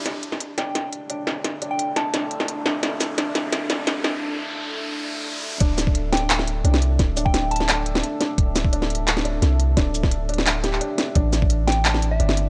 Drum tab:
HH |x---x---x---x---x---x---x-------|x---x---x---x---x---x---x-------|x---x---x---x---x---x---x-------|--------------------------------|
SH |--------------------------------|--------------------------------|----x---------------------------|--------------------------------|
CP |--------------------------------|--------------------------------|--------------------------------|--------------------------------|
SD |o-----o-----o---o-----------o---|o-----------o---o-----o-----o---|o---o---o---o---o---o---o---o---|--------------------------------|
BD |--------------------------------|--------------------------------|--------------------------------|--------------------------------|

HH |x---x---x---xx--x---x---x---x---|x---x---x---xx--x---x---x---x---|x---x---x---xx--x---x---x---x---|x---x---x---xx--x---x---x---x---|
SH |----x---------------------------|----x---------------------------|----x---------------------------|----x---------------------------|
CP |----------------x---------------|----------------x---------------|----------------x---------------|----------------x-----x---------|
SD |----o-------o-----o-------o-----|o-------o-----o-------o-----o---|----o-----o-------o-----o-------|o-----o-------o-----o-------o---|
BD |o-----o-------------------------|o-----o-------------------------|o-----o-------------------------|o-----o-------------------------|

HH |x---x---x---xx--x---x---x---x---|
SH |----x---------------------------|
CP |----------------x---------------|
SD |----o-------o-----o-------o-----|
BD |o-----o-------------------------|